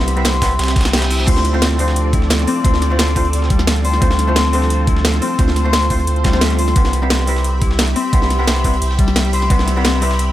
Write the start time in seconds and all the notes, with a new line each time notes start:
Already playing: C2 G3 B3 C4 E4 G4 B4 C5 E5 B5
0.08 snare, closed hi-hat
0.16 G3 B3 C4 E4 B4, closed hi-hat
0.25 C5, snare, closed hi-hat
0.34 closed hi-hat
0.41 G3 B3 C4 E4 B4, kick, snare, closed hi-hat, open hi-hat
0.51 closed hi-hat
0.59 C2, snare, closed hi-hat, reverse cymbal
0.64 snare, closed hi-hat
0.68 snare, closed hi-hat
0.76 kick, snare, closed hi-hat
0.81 snare, closed hi-hat
0.85 snare, closed hi-hat
0.93 G4, snare, closed hi-hat
0.98 snare, closed hi-hat
1.02 snare, closed hi-hat
1.10 E4, closed hi-hat, open hi-hat
1.20 snare
1.27 D2 A3 C4 D4 F4 A4 C5 D5, kick, closed hi-hat, crash
1.36 snare
1.45 snare, closed hi-hat
1.53 A3 C4 D4 F4 C5
1.62 C4, snare, closed hi-hat
1.71 snare
1.78 F3 A3 C4 D4 C5, closed hi-hat, open hi-hat
1.88 snare
1.96 closed hi-hat
2.13 E4, kick, closed hi-hat
2.22 snare
2.30 snare, closed hi-hat
2.39 closed hi-hat
2.47 C4, closed hi-hat, open hi-hat
2.64 D2 A3 C4 D4 F4 C5, kick, closed hi-hat
2.74 snare
2.82 snare, closed hi-hat
2.90 A3 C4 D4 F4 C5
2.99 C5, snare, closed hi-hat
3.08 closed hi-hat
3.15 A3 C4 D4 F4 C5, kick, closed hi-hat, open hi-hat
3.25 closed hi-hat
3.33 D2, closed hi-hat
3.42 snare
3.50 G3, kick, closed hi-hat
3.59 snare
3.67 snare, closed hi-hat
3.76 closed hi-hat
3.85 C5, closed hi-hat, open hi-hat
3.93 snare
4.01 D2 A3 C4 D4 F4 C5, kick, closed hi-hat
4.11 snare
4.19 snare, closed hi-hat
4.27 A3 C4 D4 F4 C5
4.36 C4, snare, closed hi-hat
4.45 snare
4.52 F3 A3 C4 D4 C5, closed hi-hat, open hi-hat
4.62 snare
4.70 closed hi-hat
4.87 E4, kick, closed hi-hat
4.97 snare
5.05 snare, closed hi-hat
5.14 closed hi-hat
5.22 C4, closed hi-hat, open hi-hat
5.38 D2 A3 C4 D4 F4 C5, kick, closed hi-hat
5.48 snare
5.56 snare, closed hi-hat
5.64 A3 C4 D4 F4 C5
5.73 C5, snare, closed hi-hat
5.82 closed hi-hat
5.90 A3 C4 D4 F4 C5, kick, closed hi-hat, open hi-hat
5.99 closed hi-hat
6.07 D2, closed hi-hat
6.16 closed hi-hat
6.24 G3 A3 C4 D4 F4 C5, kick, snare, closed hi-hat
6.33 A3 C4 D4 F4 C5, snare
6.41 A3 C4 D4 F4 E5, snare, closed hi-hat
6.50 snare, closed hi-hat
6.59 C5, closed hi-hat, open hi-hat
6.68 snare
6.76 C2 G3 B3 C4 E4 G4 B4 E5 B5, kick, closed hi-hat
6.85 snare
6.93 snare, closed hi-hat
7.02 G3 B3 C4 E4 B4
7.10 C4, snare, closed hi-hat
7.19 snare
7.26 G3 C4 E4 B4, closed hi-hat, open hi-hat
7.36 snare
7.44 closed hi-hat
7.62 E4, kick, closed hi-hat
7.71 snare
7.79 snare, closed hi-hat
7.88 closed hi-hat
7.96 C4, closed hi-hat, open hi-hat
8.13 C2 G3 B3 C4 E4 B4, kick, closed hi-hat
8.22 snare
8.30 snare, closed hi-hat
8.39 G3 B3 C4 E4 B4
8.47 C5, snare, closed hi-hat
8.56 closed hi-hat
8.64 G3 B3 C4 E4 B4, kick, closed hi-hat, open hi-hat
8.74 closed hi-hat
8.82 C2, closed hi-hat
8.91 snare
8.99 G3, kick, closed hi-hat
9.08 snare
9.16 snare, closed hi-hat
9.25 closed hi-hat
9.33 C5, closed hi-hat, open hi-hat
9.42 snare
9.50 C2 G3 B3 C4 E4 B4, kick, closed hi-hat
9.59 snare
9.67 snare, closed hi-hat
9.76 G3 B3 C4 E4 B4
9.85 C4, snare, closed hi-hat
9.94 snare
10.01 G3 C4 E4 B4, closed hi-hat, open hi-hat
10.11 snare
10.19 closed hi-hat